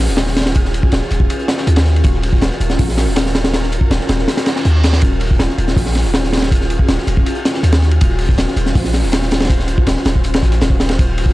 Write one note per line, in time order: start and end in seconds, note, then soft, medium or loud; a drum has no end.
0.00 11.33 C#4 medium
0.00 11.33 F4 medium
0.00 11.33 F#4 medium
0.00 2.03 G#4 medium
0.08 0.82 D#1 medium
0.08 snare medium
0.17 snare loud
0.17 closed hi-hat medium
0.17 ride medium
0.27 snare medium
0.37 snare medium
0.37 closed hi-hat medium
0.37 ride medium
0.41 snare medium
0.41 ride medium
0.46 snare medium
0.46 ride medium
0.55 kick loud
0.55 closed hi-hat medium
0.55 ride medium
0.65 snare soft
0.74 closed hi-hat medium
0.74 ride medium
0.83 kick loud
0.92 1.01 D#1 loud
0.92 snare loud
0.92 closed hi-hat medium
0.92 ride medium
1.01 snare soft
1.10 1.28 D#1 medium
1.10 snare medium
1.10 closed hi-hat medium
1.10 ride medium
1.20 kick loud
1.30 closed hi-hat medium
1.30 ride medium
1.39 closed hi-hat soft
1.48 snare loud
1.48 closed hi-hat medium
1.48 ride medium
1.58 snare soft
1.58 snare loud
1.67 2.03 D#2 medium
1.67 closed hi-hat medium
1.67 ride medium
1.76 snare soft
1.76 snare loud
1.76 ride medium
1.85 snare soft
1.85 closed hi-hat medium
1.96 ride medium
2.04 2.40 D#1 loud
2.04 5.01 A#4 medium
2.04 kick loud
2.04 closed hi-hat loud
2.04 ride medium
2.14 snare soft
2.22 snare soft
2.22 open hi-hat medium
2.22 ride medium
2.32 kick medium
2.32 snare soft
2.41 2.50 D#1 loud
2.41 snare loud
2.41 closed hi-hat medium
2.41 ride medium
2.51 snare soft
2.60 2.77 D#1 medium
2.60 closed hi-hat medium
2.60 ride medium
2.70 snare medium
2.70 closed hi-hat soft
2.79 3.08 A#1 loud
2.79 kick loud
2.79 closed hi-hat medium
2.79 open hi-hat medium
2.89 snare soft
2.97 snare loud
2.97 snare medium
2.97 closed hi-hat medium
2.97 ride medium
3.07 3.80 D#1 medium
3.16 snare loud
3.16 closed hi-hat medium
3.16 ride medium
3.26 snare medium
3.35 snare loud
3.35 closed hi-hat medium
3.35 ride medium
3.44 snare loud
3.44 ride medium
3.53 snare loud
3.53 closed hi-hat medium
3.53 ride medium
3.63 snare soft
3.72 closed hi-hat medium
3.72 ride medium
3.81 kick medium
3.90 3.99 D#1 loud
3.90 snare loud
3.90 closed hi-hat loud
3.90 ride medium
4.00 snare soft
4.09 4.26 D#1 medium
4.09 snare loud
4.09 snare medium
4.09 closed hi-hat medium
4.09 ride medium
4.19 snare soft
4.28 snare loud
4.28 closed hi-hat medium
4.28 ride medium
4.28 reverse cymbal medium
4.37 snare loud
4.37 closed hi-hat soft
4.37 ride medium
4.46 snare loud
4.46 closed hi-hat medium
4.46 ride medium
4.56 snare medium
4.56 snare loud
4.65 5.01 D#2 medium
4.65 closed hi-hat medium
4.75 snare soft
4.83 snare loud
4.83 closed hi-hat medium
4.83 ride medium
4.93 snare loud
4.93 snare soft
4.93 ride medium
5.02 5.38 D#1 loud
5.02 7.99 G#4 medium
5.02 kick loud
5.02 closed hi-hat medium
5.02 ride medium
5.11 snare soft
5.20 snare soft
5.20 open hi-hat medium
5.20 ride medium
5.31 kick medium
5.31 snare medium
5.39 5.48 D#1 loud
5.39 snare loud
5.39 closed hi-hat medium
5.39 ride medium
5.49 snare soft
5.58 5.75 D#1 medium
5.58 closed hi-hat medium
5.58 ride medium
5.68 snare medium
5.68 closed hi-hat soft
5.77 6.06 A#1 loud
5.77 kick loud
5.77 closed hi-hat medium
5.77 open hi-hat medium
5.86 snare medium
5.95 snare medium
5.95 closed hi-hat medium
5.95 ride medium
6.04 6.78 D#1 medium
6.04 snare medium
6.14 snare loud
6.14 closed hi-hat medium
6.14 ride medium
6.24 snare medium
6.33 snare medium
6.33 closed hi-hat medium
6.33 ride medium
6.37 snare loud
6.37 ride medium
6.42 snare loud
6.42 ride medium
6.52 kick loud
6.52 closed hi-hat loud
6.52 ride medium
6.61 snare soft
6.70 closed hi-hat medium
6.70 ride medium
6.79 kick medium
6.88 6.97 D#1 loud
6.88 snare loud
6.88 closed hi-hat medium
6.88 ride medium
6.98 snare soft
7.06 7.24 D#1 medium
7.06 snare medium
7.06 closed hi-hat medium
7.06 ride medium
7.17 kick medium
7.26 closed hi-hat medium
7.26 ride medium
7.35 closed hi-hat soft
7.45 snare loud
7.45 closed hi-hat medium
7.45 ride medium
7.54 snare loud
7.54 snare soft
7.63 7.99 D#2 loud
7.63 closed hi-hat medium
7.63 ride medium
7.72 snare loud
7.72 snare soft
7.72 ride medium
7.82 snare soft
7.82 closed hi-hat medium
7.91 ride medium
8.01 8.37 D#1 loud
8.01 10.98 C5 medium
8.01 kick loud
8.01 closed hi-hat loud
8.01 ride medium
8.10 snare soft
8.19 snare soft
8.19 open hi-hat medium
8.19 ride medium
8.28 kick medium
8.28 snare medium
8.38 8.46 D#1 loud
8.38 snare loud
8.38 closed hi-hat medium
8.38 ride medium
8.48 snare soft
8.56 8.73 D#1 medium
8.56 closed hi-hat medium
8.56 ride medium
8.66 snare medium
8.66 closed hi-hat soft
8.75 9.05 A#1 medium
8.75 kick loud
8.75 closed hi-hat medium
8.75 open hi-hat medium
8.84 snare medium
8.93 snare medium
8.93 closed hi-hat medium
8.93 ride medium
9.03 9.76 D#1 medium
9.03 snare medium
9.12 snare loud
9.12 closed hi-hat medium
9.12 ride medium
9.22 snare medium
9.31 snare loud
9.31 closed hi-hat medium
9.31 ride medium
9.40 snare loud
9.40 ride medium
9.45 snare medium
9.45 ride medium
9.50 kick loud
9.50 closed hi-hat medium
9.50 ride medium
9.59 snare soft
9.68 closed hi-hat medium
9.68 ride medium
9.78 kick loud
9.87 9.95 D#1 loud
9.87 snare loud
9.87 closed hi-hat loud
9.87 ride medium
9.96 snare soft
10.05 10.44 D#1 medium
10.05 snare loud
10.05 snare medium
10.05 closed hi-hat medium
10.05 ride medium
10.16 kick medium
10.24 closed hi-hat medium
10.24 ride medium
10.34 snare loud
10.34 closed hi-hat soft
10.34 ride medium
10.43 10.60 A#1 loud
10.43 kick medium
10.43 snare loud
10.43 closed hi-hat medium
10.52 snare loud
10.52 closed hi-hat medium
10.52 ride medium
10.61 10.97 D#1 medium
10.61 snare loud
10.61 closed hi-hat medium
10.61 ride medium
10.70 kick loud
10.70 snare soft
10.80 snare loud
10.80 closed hi-hat medium
10.80 ride medium
10.89 snare loud
10.89 ride medium
10.99 11.33 D#1 loud
10.99 11.33 G#4 medium
10.99 kick loud
10.99 closed hi-hat medium
10.99 ride medium
11.08 snare soft
11.17 snare soft
11.17 open hi-hat medium
11.17 ride medium
11.26 kick medium
11.26 snare medium